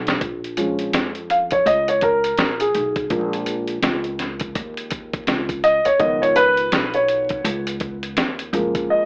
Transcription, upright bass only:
Already playing: B1
0.21 A#1
0.94 F2
1.66 C#2
2.38 A#1
2.75 B1
3.10 A#1
3.83 C#2
4.55 D#2
5.27 C#2
5.86 muted upright bass stroke
6.00 C#2
6.72 B1
7.44 C#2
8.17 D#2
8.53 F#1

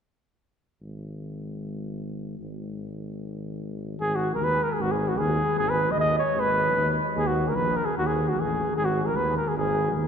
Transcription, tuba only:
0.81 G#1
2.39 G#1
4.00 G#1
4.40 D#2
4.79 G#1
5.19 D#2
5.57 G#1
5.96 D#2
6.36 G#1
6.76 D#2
7.16 D#2
7.57 A#1
7.98 D#2
8.38 A1
8.77 G#1
9.17 D#2
9.56 G#1
9.95 D#2

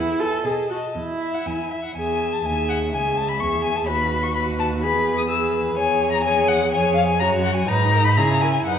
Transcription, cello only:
Already playing: E2
0.44 B2
0.95 E2
1.46 E2
1.95 E2
2.44 D#2
2.93 C#2
3.40 E2
3.88 D#2
4.83 E2
5.77 E2
6.73 F2
7.21 F#2
7.69 G#2
8.18 C#3
8.67 F#2

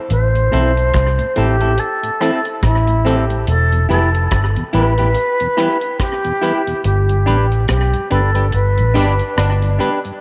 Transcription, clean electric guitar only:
0.52 C4 E4 A4
1.36 C4 E4 A4
1.61 C4 E4 A4
2.21 C4 E4 A4
2.46 muted clean electric guitar stroke
3.05 C4 E4 A4
3.89 E4 G4 B4
4.73 E4 G4 B4
4.98 E4 G4 B4
5.57 E4 G4 B4
6.41 E4 G4 B4
7.26 D4 G4 B4
8.10 D4 G4 B4
8.35 D4 G4 B4
8.94 D4 G4 B4
9.79 D4 G4 B4

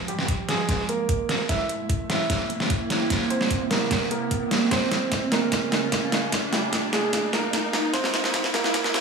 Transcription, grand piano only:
0.08 G3 G4
0.49 G#3 G#4
0.89 A#3 A#4
1.49 E4 E5
2.10 E4 E5
3.30 C4 C5
3.71 A#3 A#4
4.11 A#3 A#4
4.71 C4 C5
5.32 A#3 A#4
6.53 G3 G4
6.93 G#3 G#4
7.33 A#3 A#4
7.93 C4 C5
8.54 A#3 A#4

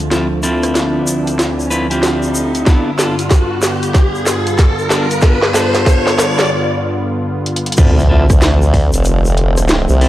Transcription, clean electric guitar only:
0.11 C4 E4 F4 A4
0.43 C4 E4 F4 A4
1.70 C4 E4 F4 B4
1.90 C4 E4 F4 G4
2.66 B3 D4 F4 A4
2.98 B3 D4 F4 A4
4.90 B3 D4 F4 A4
5.22 B3 D4 F4 A4
5.54 B3 D4 F4 A4
7.77 C4 E4 F4 A4
8.09 C4 E4 F4 A4
10.01 C4 E4 F4 A4

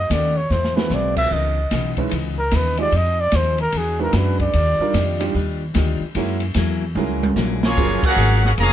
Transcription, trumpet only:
Already playing: D#5
0.12 D5
0.37 C#5
0.52 C5
0.76 B4
0.94 D5
1.17 E5
1.33 D#5
2.39 A#4
2.56 B4
2.81 D5
2.96 D#5
3.20 D5
3.36 C5
3.61 A#4
3.78 G#4
4.02 A#4
4.17 B4
4.41 D5

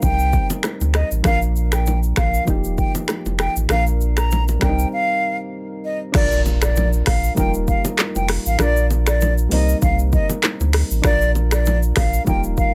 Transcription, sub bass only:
0.03 C2
0.81 D2
1.11 A1
1.25 A#1
2.17 A#1
2.48 D#1
3.25 F1
3.56 A1
3.70 A#1
4.62 C2
6.15 A#1
7.07 A#1
7.37 D#1
8.15 F1
8.46 A1
8.60 A#1
9.51 C2
9.82 C2
10.60 D2
10.91 A1
11.05 A#1
11.97 A#1
12.27 D#1

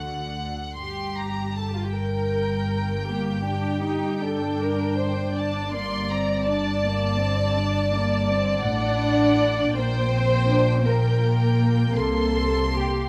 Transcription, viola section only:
Already playing: F#4
3.08 A#3
3.46 D4
3.84 D#4
4.22 D4
5.36 D4
5.75 A#3
6.12 C4
6.49 D4
6.84 A#3
7.21 C4
7.59 D4
7.95 A#3
8.31 C4
8.67 D4
9.77 A#3
10.12 C4
10.48 D4
10.86 A#3

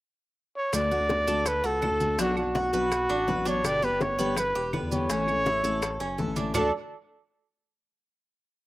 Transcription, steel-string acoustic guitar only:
0.73 D3 A3 D4 F#4
0.91 A3 D4 F#4
1.27 A3 D4 F#4
1.45 muted steel-string acoustic guitar stroke
1.82 D3 A3 D4 F#4
2.00 A3 D4 F#4
2.18 B2 F#3 B3 D4 F#4
2.36 B3 D4 F#4
2.72 F#3 B3 D4 F#4
2.91 muted steel-string acoustic guitar stroke
3.27 F#3 B3 D4 F#4
3.46 F#3 B3 D4 F#4
3.63 B2 D3 G3 B3 G4
3.82 G3 B3 G4
4.18 D3 G3 B3 G4
4.37 muted steel-string acoustic guitar stroke
4.73 D3 G3 B3 G4
4.92 D3 G3 B3 G4
5.10 E3 A3 C#4 E4
5.28 A3 C#4 E4
5.63 A3 C#4 E4
5.83 muted steel-string acoustic guitar stroke
6.18 E3 A3 C#4 E4
6.36 A3 C#4 E4
6.54 D3 A3 D4 F#4

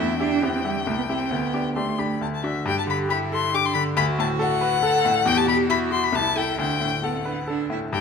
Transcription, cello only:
Already playing: E4
0.20 D4
0.42 C4
0.55 C4
0.65 G3
0.88 A3
0.98 B3
1.09 C4
1.31 B3
1.76 A3
2.65 G4
3.10 E4
3.55 D4
3.97 F#4
4.84 A4
5.26 G4
5.70 F#4
6.14 E4
6.59 D4
7.04 B3
7.16 C4
7.27 D4
7.49 D4
7.71 E4

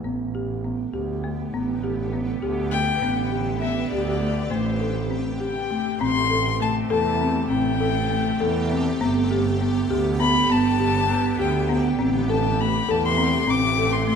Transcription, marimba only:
0.04 B3
0.35 G4
0.65 B3
0.94 G4
1.24 A3
1.54 B3
1.84 G4
2.13 B3
2.42 G4
2.72 A3
3.02 B3
3.32 G4
3.62 B3
3.91 G4
4.21 A3
4.51 A3
4.80 A4
5.10 C4
5.40 G4
5.71 A3
6.01 C4
6.30 A4
6.60 A3
6.90 A4
7.21 C4
7.50 C4
7.80 A4
8.10 A3
8.40 A4
8.71 C4
9.01 B3
9.31 G4
9.61 B3
9.90 G4
10.20 B3
10.50 B3
10.80 G4
11.09 B3
11.39 G4
11.69 B3
11.99 C4
12.29 A4
12.59 A3
12.89 A4
13.17 C4
13.47 C4
13.78 A4
14.08 A3

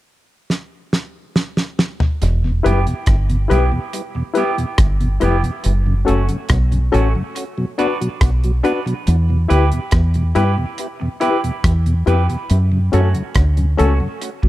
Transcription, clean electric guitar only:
2.65 B3 E4 G4
3.50 B3 E4 G4
4.16 muted clean electric guitar stroke
4.37 B3 E4 G4
5.22 B3 E4 G4
5.45 muted clean electric guitar stroke
6.08 A3 C#4 F#4
6.94 A3 C#4 F#4
7.78 D4 F#4 B4
8.63 D4 F#4 B4
8.86 muted clean electric guitar stroke
9.49 E4 G4 B4
10.35 E4 G4 B4
11.00 muted clean electric guitar stroke
11.20 E4 G4 B4
12.07 E4 G4 B4
12.28 muted clean electric guitar stroke
12.93 A3 C#4 F#4
13.78 A3 C#4 F#4
14.43 muted clean electric guitar stroke

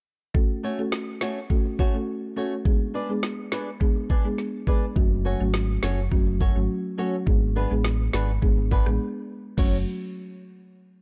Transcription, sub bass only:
4.96 F#1
5.40 G#1
5.83 F#1
6.12 F#1
6.56 G#1
7.27 G#1
7.71 A1
8.13 G#1
8.42 G#1
8.86 A1
9.58 F#1

